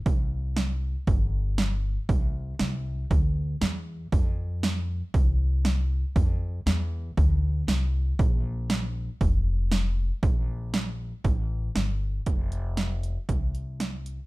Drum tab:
HH |o-o-o-o-|o-o-o-o-|o-o-o-o-|o-o-o-o-|
SD |--o---o-|--o---o-|--o---o-|--o---o-|
BD |o---o---|o---o---|o---o---|o---o---|

HH |o-o-o-o-|o-o-o-o-|xxxxxxxx|
SD |--o---o-|--o---o-|--o---o-|
BD |o---o---|o---o---|o---o---|